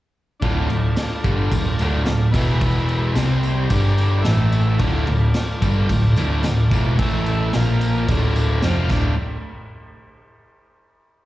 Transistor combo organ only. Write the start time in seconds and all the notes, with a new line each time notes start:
0.40 D4 F4
0.44 A4
2.30 B3 E4 B4
3.10 C4 G4 C5
3.69 D4 G4 D5
4.20 E4 A4 E5
4.76 F4 A4 D5
6.98 E4 A4 E5
7.54 F4 A#4 F5
8.09 F4 A4 D5
8.65 F4 C5 F5
8.91 A4 D5 F5